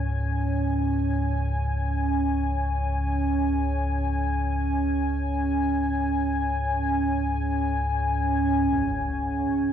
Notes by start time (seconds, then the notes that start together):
Already playing: C#2 G#2 C#4 G#5
8.71 C#2 G#2 C#5 F#5, impact